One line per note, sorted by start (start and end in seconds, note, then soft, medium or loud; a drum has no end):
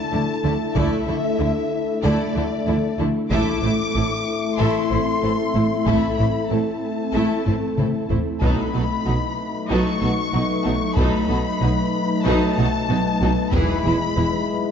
0.00 3.28 A3 medium
0.00 3.28 A3 soft
0.00 3.28 D4 medium
0.00 3.28 E4 medium
0.00 3.28 E4 soft
0.00 3.28 A4 medium
0.00 0.76 A5 medium
0.12 0.20 D2 soft
0.12 0.20 D3 soft
0.12 0.20 A3 soft
0.12 0.20 D4 soft
0.12 0.20 E4 soft
0.44 0.52 D2 soft
0.44 0.52 D3 soft
0.44 0.52 A3 soft
0.44 0.52 E4 soft
0.44 0.52 A4 soft
0.75 0.84 D2 medium
0.75 0.84 D3 medium
0.75 1.05 A3 medium
0.75 1.05 E4 medium
0.75 1.05 A4 medium
0.75 1.05 D5 medium
0.75 2.04 E5 medium
0.75 taiko medium
1.07 1.16 D2 soft
1.07 1.16 D3 soft
1.07 1.16 A3 soft
1.07 1.15 E4 soft
1.07 1.16 E4 soft
1.07 1.16 A4 soft
1.38 1.48 D2 soft
1.38 1.48 D3 soft
1.38 1.46 A3 soft
1.38 1.48 D4 soft
1.38 1.46 E4 soft
1.38 1.48 E4 soft
2.03 2.11 D2 medium
2.03 2.11 D3 medium
2.03 2.33 A3 medium
2.03 2.33 E4 medium
2.03 2.33 A4 medium
2.03 2.33 D5 medium
2.03 2.98 D5 medium
2.35 2.43 D2 medium
2.35 2.44 D3 soft
2.35 2.43 A3 medium
2.35 2.43 E4 soft
2.35 2.44 E4 medium
2.35 2.44 A4 medium
2.67 2.75 D2 soft
2.67 2.75 D3 soft
2.67 2.75 A3 soft
2.67 2.75 D4 medium
2.67 2.75 E4 medium
2.99 3.07 D2 soft
2.99 3.08 D3 soft
2.99 3.08 A3 soft
2.99 3.07 E4 soft
2.99 3.07 E4 medium
2.99 3.07 A4 soft
3.30 3.38 A1 medium
3.30 3.39 A2 medium
3.30 3.61 A3 medium
3.30 8.06 A3 medium
3.30 8.38 A3 medium
3.30 8.42 C4 medium
3.30 3.61 E4 medium
3.30 8.38 E4 medium
3.30 8.06 E4 medium
3.30 8.38 A4 medium
3.30 3.61 A4 medium
3.30 3.62 E5 medium
3.30 4.55 D6 loud
3.30 taiko medium
3.63 3.71 A1 soft
3.63 3.72 A2 soft
3.63 3.71 A3 soft
3.63 3.71 E4 soft
3.63 3.71 C5 soft
3.95 4.03 A1 medium
3.95 4.03 A2 soft
3.95 4.03 A3 soft
3.95 4.04 C4 soft
3.95 4.03 E4 soft
3.95 4.04 A4 soft
4.58 4.67 A1 medium
4.58 4.67 A2 medium
4.58 4.89 A3 medium
4.58 4.89 E4 medium
4.58 4.88 A4 medium
4.58 4.89 E5 medium
4.58 5.87 C6 medium
4.91 4.99 A1 soft
4.91 4.99 A2 soft
4.91 4.99 A3 soft
4.91 4.99 E4 soft
4.91 4.99 C5 soft
5.22 5.31 A1 soft
5.22 5.31 A2 soft
5.22 5.30 A3 soft
5.22 5.31 C4 soft
5.22 5.31 E4 soft
5.22 5.31 A4 soft
5.54 5.63 A1 soft
5.54 5.63 A2 soft
5.54 5.64 A3 soft
5.54 5.62 E4 soft
5.54 5.63 E4 soft
5.54 5.62 C5 soft
5.86 5.94 A1 soft
5.86 5.95 A2 soft
5.86 6.16 A3 medium
5.86 6.16 E4 medium
5.86 6.16 A4 soft
5.86 6.16 E5 soft
5.86 6.51 B5 medium
5.86 taiko medium
6.17 6.27 A1 soft
6.17 6.27 A2 soft
6.17 6.25 A3 soft
6.17 6.25 E4 soft
6.17 6.26 E4 soft
6.17 6.26 C5 soft
6.50 6.58 A1 soft
6.50 6.59 A2 soft
6.50 6.58 A3 soft
6.50 6.59 C4 soft
6.50 6.58 E4 soft
6.50 6.59 A4 soft
6.50 8.10 A5 soft
7.14 7.22 A1 soft
7.14 7.23 A2 soft
7.14 7.44 A3 medium
7.14 7.44 E4 medium
7.14 7.44 A4 soft
7.14 7.44 E5 soft
7.46 7.54 A1 soft
7.46 7.55 A2 soft
7.46 7.54 A3 soft
7.46 7.54 E4 soft
7.46 7.54 C5 soft
7.46 taiko low-mid medium
7.78 7.86 A1 soft
7.78 7.87 A2 soft
7.78 7.86 A3 soft
7.78 7.86 C4 soft
7.78 7.86 E4 soft
7.78 7.86 A4 soft
7.78 taiko mid medium
8.10 8.18 A1 soft
8.10 8.19 A2 soft
8.10 8.18 A3 soft
8.10 8.18 E4 soft
8.10 8.18 C5 soft
8.10 taiko low medium
8.41 8.50 B1 medium
8.41 8.51 B2 medium
8.41 8.72 F#3 medium
8.41 13.53 F#3 medium
8.41 13.49 A3 medium
8.41 13.53 A3 medium
8.41 13.49 D#4 soft
8.41 13.53 D#4 medium
8.41 8.72 D#4 soft
8.41 8.71 A4 soft
8.41 8.71 B4 soft
8.41 13.52 B4 medium
8.41 9.66 B5 medium
8.41 taiko medium
8.73 8.82 B1 soft
8.73 8.83 B2 soft
8.73 8.82 F#3 soft
8.73 8.82 D#4 soft
8.73 8.81 F#4 soft
8.73 8.81 A4 soft
9.05 9.15 B1 soft
9.05 9.15 B2 soft
9.05 9.13 F#3 soft
9.05 9.14 D#4 soft
9.05 9.14 F#4 soft
9.69 9.79 B1 soft
9.69 9.78 B2 medium
9.69 9.99 F#3 medium
9.69 9.99 D#4 medium
9.69 9.99 A4 soft
9.69 9.99 B4 soft
9.69 10.95 C#6 medium
10.00 10.10 B1 soft
10.00 10.10 B2 soft
10.00 10.09 F#3 soft
10.00 10.09 D#4 soft
10.00 10.08 F#4 soft
10.00 10.08 A4 soft
10.33 10.42 B1 soft
10.33 10.41 B2 soft
10.33 10.42 F#3 soft
10.33 10.41 D#4 soft
10.33 10.42 D#4 soft
10.33 10.41 F#4 soft
10.64 10.74 B1 soft
10.64 10.73 B2 soft
10.64 10.74 F#3 soft
10.64 10.74 D#4 soft
10.64 10.72 F#4 soft
10.64 10.72 A4 soft
10.96 11.05 B1 medium
10.96 11.05 B2 medium
10.96 11.27 F#3 medium
10.96 11.27 D#4 medium
10.96 11.27 A4 medium
10.96 11.27 B4 medium
10.96 12.22 B5 medium
10.96 taiko medium
11.28 11.38 B1 soft
11.28 11.37 B2 soft
11.28 11.39 F#3 soft
11.28 11.39 D#4 soft
11.28 11.36 F#4 soft
11.28 11.37 A4 soft
11.61 11.70 B1 soft
11.61 11.69 B2 soft
11.61 11.70 F#3 soft
11.61 11.69 D#4 soft
11.61 11.70 D#4 soft
11.61 11.69 F#4 soft
12.25 12.34 B1 medium
12.25 12.33 B2 medium
12.25 12.56 F#3 medium
12.25 12.56 D#4 medium
12.25 12.55 A4 medium
12.25 12.55 B4 medium
12.25 13.53 A5 medium
12.58 12.66 B1 medium
12.58 12.66 B2 medium
12.58 12.66 F#3 medium
12.58 12.66 D#4 soft
12.58 12.66 F#4 medium
12.58 12.66 A4 medium
12.89 12.97 B1 medium
12.89 12.97 B2 soft
12.89 12.98 F#3 medium
12.89 12.97 D#4 medium
12.89 12.98 D#4 medium
12.89 12.97 F#4 medium
13.21 13.29 B1 medium
13.21 13.29 B2 medium
13.21 13.31 F#3 medium
13.21 13.31 D#4 medium
13.21 13.30 F#4 soft
13.21 13.30 A4 soft
13.52 13.61 E1 medium
13.52 13.60 E2 medium
13.52 14.71 E3 medium
13.52 13.83 E3 medium
13.52 14.71 G#3 medium
13.52 14.71 E4 medium
13.52 13.83 E4 medium
13.52 13.83 G#4 medium
13.52 14.71 B4 medium
13.52 13.83 B4 medium
13.52 14.71 B5 loud
13.52 taiko medium
13.84 13.93 E1 soft
13.84 13.92 E2 medium
13.84 13.94 E3 medium
13.84 13.94 E4 medium
13.84 13.94 E4 soft
13.84 13.93 G#4 soft
14.16 14.25 E1 medium
14.16 14.25 E2 medium
14.16 14.24 E3 soft
14.16 14.24 B3 soft
14.16 14.24 E4 medium
14.16 14.25 E4 soft